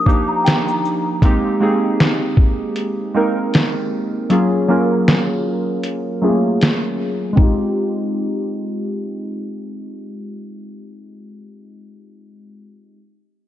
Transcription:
Already playing: synth keys F3 A#3 D4 D#4 G4 A#4
0.06 synth keys F3 A#3 D4 D#4 G4, celesta D6, kick, shaker
0.28 celesta A#5
0.44 celesta G5, snare, closed hi-hat, shaker
0.66 celesta A#5, shaker
0.85 shaker
1.22 synth keys G#3 A#3 C4 D#4 G4, kick, closed hi-hat
1.60 synth keys G#3 A#3 C4 D#4 G#4
2.00 snare, closed hi-hat
2.37 kick
2.76 closed hi-hat
3.14 synth keys G#3 A#3 C4 D#4 A#4
3.54 snare, closed hi-hat
4.30 synth keys F#3 A#3 C#4 F4 G#4, closed hi-hat
4.68 synth keys F#3 A#3 C#4 F4 A#4
5.08 snare, closed hi-hat
5.84 closed hi-hat
6.22 synth keys F#3 A3 C#4 F4 G#4
6.29 synth keys A#3
6.61 snare, closed hi-hat
7.33 synth keys G#3 C4
7.37 synth keys D#4 F4, kick
7.43 synth keys G4

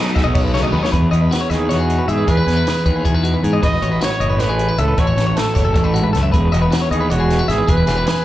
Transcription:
Already playing: overdriven electric guitar B2 F#3 A3 D#4, clean electric guitar B2 F#3 A3 D#4 G#4 D#5
0.15 clean electric guitar A3 E5, kick, snare, ride
0.24 fingered electric bass B1, clean electric guitar D#5
0.34 clean electric guitar B2 C#5, kick, ride
0.44 clean electric guitar B4
0.54 overdriven electric guitar B2 F#3 A3 D#4, clean electric guitar C#3 C#5, snare, ride
0.63 clean electric guitar D#5, high tom
0.72 fingered electric bass D#2, overdriven electric guitar B2 F#3 A3 D#4, clean electric guitar D#3 B4
0.83 clean electric guitar C#5, snare
0.92 fingered electric bass E2, clean electric guitar E2 G#4 B4, kick, closed hi-hat
1.11 fingered electric bass E2, clean electric guitar B3 D#5, closed hi-hat
1.21 clean electric guitar B4
1.31 clean electric guitar E3 F#4, snare, closed hi-hat
1.41 clean electric guitar C#5
1.50 fingered electric bass D#2, clean electric guitar D#4 D#5, trumpet G#4, snare, closed hi-hat
1.60 clean electric guitar B4
1.69 fingered electric bass E2, clean electric guitar B2 C#5, trumpet F#4, snare, closed hi-hat
1.79 clean electric guitar G#4
1.90 clean electric guitar D#4, closed hi-hat
1.99 clean electric guitar B4
2.08 fingered electric bass G#2, clean electric guitar E3 E5, trumpet G#4, closed hi-hat
2.18 clean electric guitar B4
2.27 fingered electric bass E2, clean electric guitar E2 G#4, trumpet B4, kick, closed hi-hat
2.37 clean electric guitar B4
2.47 fingered electric bass E2, clean electric guitar B3 G#4, snare, closed hi-hat
2.57 clean electric guitar B4
2.66 clean electric guitar E3 G#4, snare, closed hi-hat
2.86 fingered electric bass D#2, clean electric guitar D#4 B4, kick, closed hi-hat
2.95 clean electric guitar G#4
3.05 fingered electric bass E2, clean electric guitar B2 G#4, kick, closed hi-hat
3.14 clean electric guitar B4
3.23 clean electric guitar D#4 F#4, closed hi-hat
3.34 clean electric guitar B4
3.43 fingered electric bass G#2, clean electric guitar E3 G#4, closed hi-hat
3.53 clean electric guitar D#5
3.62 fingered electric bass A1, clean electric guitar A2 F#4 B4, trumpet D#5, kick, closed hi-hat
3.82 fingered electric bass A1, clean electric guitar C#4 C#5, closed hi-hat
3.92 clean electric guitar B4
4.01 clean electric guitar E3 F#4, trumpet C#5, snare, closed hi-hat
4.11 clean electric guitar C#5
4.20 fingered electric bass F#1, clean electric guitar E4 D#5, closed hi-hat
4.30 clean electric guitar B4
4.39 fingered electric bass A1, clean electric guitar E3 C#5, trumpet B4, snare, closed hi-hat
4.49 clean electric guitar G#4
4.59 clean electric guitar E4, closed hi-hat
4.68 clean electric guitar B4
4.78 fingered electric bass C#2, clean electric guitar E3 E5, trumpet A4, closed hi-hat
4.88 clean electric guitar B4
4.97 fingered electric bass A1, clean electric guitar A2 F#4 A4, trumpet C#5, kick, closed hi-hat
5.07 clean electric guitar C#5
5.17 fingered electric bass A1, clean electric guitar C#4 A4, snare, closed hi-hat
5.27 clean electric guitar C#5
5.36 clean electric guitar E3 A4, trumpet A4, snare, closed hi-hat
5.55 fingered electric bass F#1, clean electric guitar E4 C#5, kick, snare, closed hi-hat
5.65 clean electric guitar A4
5.74 fingered electric bass A1, clean electric guitar A2 A4, kick, closed hi-hat
5.84 clean electric guitar B4
5.94 clean electric guitar G#2 F#4, closed hi-hat
6.04 clean electric guitar B4
6.13 fingered electric bass C#2, clean electric guitar F#2 A4, snare, closed hi-hat
6.23 clean electric guitar E5
6.32 fingered electric bass E1, clean electric guitar E2 G#4 B4, kick, closed hi-hat
6.52 fingered electric bass E1, clean electric guitar B3 D#5, closed hi-hat
6.62 clean electric guitar B4
6.72 clean electric guitar E3 F#4, snare, closed hi-hat
6.81 clean electric guitar C#5
6.91 fingered electric bass D#2, clean electric guitar D#4 D#5, trumpet G#4, closed hi-hat
7.00 clean electric guitar B4
7.10 fingered electric bass E1, clean electric guitar B2 C#5, trumpet F#4, closed hi-hat
7.20 clean electric guitar G#4
7.30 clean electric guitar D#4, snare, closed hi-hat
7.39 clean electric guitar B4
7.48 fingered electric bass G#1, clean electric guitar E3 E5, trumpet G#4, snare, closed hi-hat
7.58 clean electric guitar B4
7.67 fingered electric bass E1, clean electric guitar E2 G#4, trumpet B4, kick, closed hi-hat
7.77 clean electric guitar B4
7.87 fingered electric bass E1, clean electric guitar B3 G#4, snare, closed hi-hat
7.97 clean electric guitar B4
8.06 clean electric guitar E3 G#4, snare, closed hi-hat

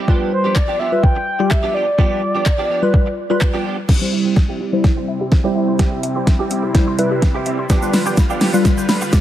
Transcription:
0.07 clean electric guitar F3 B3 D4 G4, synth keys G3 F4 B4, kick
0.32 soft synth lead C5, muted clean electric guitar stroke
0.44 clean electric guitar F3 B3 D4 G4
0.56 soft synth lead D5, muted clean electric guitar stroke, kick, clap
0.68 clean electric guitar F3 B3 D4 G4
0.79 clean electric guitar F3 B3 D4 G4, soft synth lead E5
0.92 synth keys G3 F4 B4, muted clean electric guitar stroke
1.03 soft synth lead G5, muted clean electric guitar stroke, kick
1.15 muted clean electric guitar stroke
1.39 synth keys G3 F4 G4, muted clean electric guitar stroke
1.50 soft synth lead E5, muted clean electric guitar stroke, kick, clap
1.63 clean electric guitar F3 B3 D4 G4
1.74 clean electric guitar F3 B3 D4 G4, soft synth lead D5
1.87 muted clean electric guitar stroke
1.98 clean electric guitar F3 B3 D4 G4, synth keys G3 F4 D5, kick
2.22 muted clean electric guitar stroke
2.35 clean electric guitar F3 B3 D4 G4
2.46 muted clean electric guitar stroke, kick, clap
2.58 clean electric guitar F3 B3 D4 G4
2.69 clean electric guitar F3 B3 D4 G4
2.82 synth keys G3 F4 B4, muted clean electric guitar stroke
2.94 muted clean electric guitar stroke, kick
3.06 muted clean electric guitar stroke
3.30 synth keys G3 F4 B4, muted clean electric guitar stroke
3.41 muted clean electric guitar stroke, kick, clap
3.54 clean electric guitar F3 B3 D4 G4
3.65 clean electric guitar F3 B3 D4 G4
3.77 muted clean electric guitar stroke
3.88 supersaw synth C3 G3 C4 E4, clean electric guitar G3 C4 E4 G4, synth arpeggio sound C4, synth keys E4 C5, kick, snare, crash
4.01 synth keys G3 E4 C5, synth arpeggio sound G4
4.12 synth arpeggio sound E5, muted clean electric guitar stroke
4.25 clean electric guitar G3 C4 E4 G4, synth arpeggio sound C6
4.36 synth arpeggio sound E5, muted clean electric guitar stroke, kick, snare
4.48 clean electric guitar G3 C4 E4 G4, synth arpeggio sound G4
4.60 clean electric guitar G3 C4 E4 G4, synth arpeggio sound C4
4.73 synth keys G3 E4 C5, synth arpeggio sound G4, muted clean electric guitar stroke
4.84 muted clean electric guitar stroke, kick, snare
4.96 synth arpeggio sound C6, muted clean electric guitar stroke
5.08 synth arpeggio sound E5
5.20 synth arpeggio sound G4, muted clean electric guitar stroke
5.31 synth arpeggio sound C4, muted clean electric guitar stroke, kick, snare
5.44 synth keys G3 E4 C5, clean electric guitar G3 C4 E4 G4, synth arpeggio sound G4
5.55 clean electric guitar G3 C4 E4 G4, synth arpeggio sound E5
5.68 synth arpeggio sound C6, muted clean electric guitar stroke
5.79 clean electric guitar G3 C4 E4 G4, synth arpeggio sound C4, kick, snare, closed hi-hat
5.92 synth arpeggio sound G4
6.03 synth arpeggio sound E5, muted clean electric guitar stroke, closed hi-hat
6.15 clean electric guitar G3 C4 E4 G4, synth arpeggio sound C6
6.27 synth arpeggio sound E5, muted clean electric guitar stroke, kick, snare, closed hi-hat
6.39 clean electric guitar G3 C4 E4 G4, synth arpeggio sound G4
6.50 clean electric guitar G3 C4 E4 G4, synth arpeggio sound C4, closed hi-hat
6.63 synth keys E4 C5, synth arpeggio sound G4, muted clean electric guitar stroke
6.74 synth keys G3 E4 C5, muted clean electric guitar stroke, kick, snare, closed hi-hat
6.87 synth arpeggio sound C6, muted clean electric guitar stroke
6.98 synth keys G3 E4 B4, synth arpeggio sound E5, closed hi-hat
7.11 synth arpeggio sound G4, muted clean electric guitar stroke
7.22 synth arpeggio sound C4, muted clean electric guitar stroke, kick, snare, closed hi-hat
7.34 clean electric guitar G3 C4 E4 G4, synth arpeggio sound G4
7.46 clean electric guitar G3 C4 E4 G4, synth arpeggio sound E5, closed hi-hat
7.58 synth arpeggio sound C6, muted clean electric guitar stroke
7.69 supersaw synth D3 F4 B4, clean electric guitar F3 B3 D4 G4, synth keys F4 B4, synth arpeggio sound G4, kick, snare, closed hi-hat, shaker
7.82 synth keys G3 F4 B4, synth arpeggio sound F5, shaker
7.93 synth arpeggio sound B5, muted clean electric guitar stroke, snare, open hi-hat, shaker
8.06 clean electric guitar F3 B3 D4 G4, synth arpeggio sound G6, shaker
8.17 synth arpeggio sound B5, muted clean electric guitar stroke, kick, snare, closed hi-hat, shaker
8.30 clean electric guitar F3 B3 D4 G4, synth arpeggio sound F5, shaker
8.41 clean electric guitar F3 B3 D4 G4, synth arpeggio sound G4, snare, open hi-hat, shaker
8.53 synth keys G3 F4 B4, synth arpeggio sound F5, muted clean electric guitar stroke, shaker
8.65 muted clean electric guitar stroke, kick, snare, closed hi-hat, shaker
8.77 synth arpeggio sound G6, muted clean electric guitar stroke, shaker
8.89 synth arpeggio sound B5, snare, open hi-hat, shaker
9.01 synth arpeggio sound F5, muted clean electric guitar stroke, shaker
9.12 synth arpeggio sound G4, muted clean electric guitar stroke, kick, snare, closed hi-hat, shaker

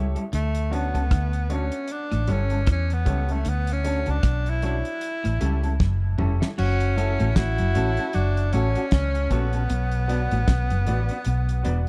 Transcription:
Already playing: fingered electric bass C#2, grand piano G4 A4 C#5
0.15 clean electric guitar G3 C#4 E4 A4, closed hi-hat
0.33 fingered electric bass D2, clean electric guitar D3, tenor saxophone A3, closed hi-hat
0.55 closed hi-hat
0.70 clean electric guitar A3 C#4 F#4 A4, tenor saxophone B3, grand piano D4 F#4 C#5, closed hi-hat
0.94 fingered electric bass C#2, clean electric guitar C#3 A3 C#4 F#4 A4, closed hi-hat
1.11 fingered electric bass D2, clean electric guitar D3, kick, cross-stick, closed hi-hat
1.33 closed hi-hat
1.49 clean electric guitar A3 C#4 F#4 A4, grand piano D4 F#4 C#5, closed hi-hat
1.54 tenor saxophone C#4
1.72 closed hi-hat
1.88 closed hi-hat
1.92 tenor saxophone D4
2.12 fingered electric bass A1, clean electric guitar A2, cross-stick, closed hi-hat
2.27 fingered electric bass G1, clean electric guitar G2 G3 C#4 E4 A4, grand piano G4 A4 C#5, closed hi-hat
2.32 tenor saxophone C#4
2.50 clean electric guitar G3 C#4 E4 A4, closed hi-hat
2.67 fingered electric bass E2, clean electric guitar E3, kick, cross-stick, closed hi-hat
2.72 tenor saxophone C#4
2.90 tenor saxophone B3, closed hi-hat
3.05 fingered electric bass C#2, clean electric guitar C#3 G3 C#4 E4 A4, grand piano G4 A4 C#5, kick, closed hi-hat
3.29 clean electric guitar G3 C#4 E4 A4, tenor saxophone A3, closed hi-hat
3.45 fingered electric bass D2, clean electric guitar D3, closed hi-hat
3.49 tenor saxophone B3
3.67 closed hi-hat
3.72 tenor saxophone C#4
3.83 clean electric guitar A3 C#4 F#4 A4, grand piano D4 F#4 C#5, closed hi-hat
4.06 fingered electric bass C#2, clean electric guitar C#3 A3 C#4 F#4 A4, closed hi-hat
4.10 tenor saxophone D4
4.23 fingered electric bass B1, clean electric guitar B2, kick, cross-stick, closed hi-hat
4.46 tenor saxophone E4, closed hi-hat
4.62 clean electric guitar A3 C#4 F#4 A4, grand piano D4 F#4 C#5, tenor saxophone E4, closed hi-hat
4.85 closed hi-hat
5.01 closed hi-hat
5.24 fingered electric bass A1, clean electric guitar A2, cross-stick, closed hi-hat
5.40 fingered electric bass C#2, clean electric guitar C#3 G3 C#4 E4 A4, grand piano C#4 G4 A4, closed hi-hat
5.63 clean electric guitar G3 C#4 E4 A4, closed hi-hat
5.80 fingered electric bass F#1, clean electric guitar F#2, kick, snare
6.18 fingered electric bass F1, clean electric guitar F2 G3 C#4 E4 A4, grand piano C#4 G4 A4, mid tom
6.40 clean electric guitar G3 C#4 E4 A4, snare
6.58 fingered electric bass F#1, clean electric guitar F#2, tenor saxophone C#4 F#4, crash
6.80 closed hi-hat
6.96 clean electric guitar A3 C#4 F#4 A4, tenor saxophone E4, grand piano F#4 A4 C#5, closed hi-hat
7.20 fingered electric bass A1, clean electric guitar A2 A3 C#4 F#4 A4, closed hi-hat
7.36 fingered electric bass A1, clean electric guitar A2, tenor saxophone E4 F#4, kick, snare, closed hi-hat
7.58 fingered electric bass F#1, clean electric guitar F#2, closed hi-hat
7.74 fingered electric bass A1, clean electric guitar A2 A3 C#4 F#4 A4, grand piano F#4 A4 C#5, closed hi-hat
7.97 clean electric guitar A3 C#4 F#4 A4, closed hi-hat
8.13 fingered electric bass F#1, clean electric guitar F#2, tenor saxophone D4 F#4, closed hi-hat
8.37 closed hi-hat
8.53 fingered electric bass A1, clean electric guitar A2 A3 C#4 F#4 A4, tenor saxophone C#4, grand piano F#4 A4 C#5, closed hi-hat
8.75 clean electric guitar A3 C#4 F#4 A4, closed hi-hat
8.91 fingered electric bass C#2, clean electric guitar C#3, tenor saxophone C#4, kick, snare, closed hi-hat
9.15 closed hi-hat
9.30 fingered electric bass A#1, clean electric guitar A#2 A3 C#4 F#4 A4, tenor saxophone B3, grand piano F#4 A4 C#5, kick, closed hi-hat
9.53 clean electric guitar A3 C#4 F#4 A4, closed hi-hat
9.70 fingered electric bass B1, clean electric guitar B2, closed hi-hat
9.92 closed hi-hat
10.08 clean electric guitar B3 D4 F#4 B4, grand piano F#4 B4 D5, closed hi-hat
10.31 fingered electric bass A1, clean electric guitar A2 B3 D4 F#4 B4, closed hi-hat
10.48 fingered electric bass B1, clean electric guitar B2, kick, snare, closed hi-hat
10.70 fingered electric bass F#1, clean electric guitar F#2, closed hi-hat
10.86 fingered electric bass A1, clean electric guitar A2 B3 D4 F#4 B4, grand piano F#4 B4 D5, closed hi-hat
11.09 clean electric guitar B3 D4 F#4 B4, closed hi-hat
11.24 fingered electric bass B1, clean electric guitar B2, closed hi-hat
11.49 closed hi-hat
11.63 fingered electric bass E1, clean electric guitar E2 B3 D4 F#4 B4, grand piano F#4 B4 D5, closed hi-hat

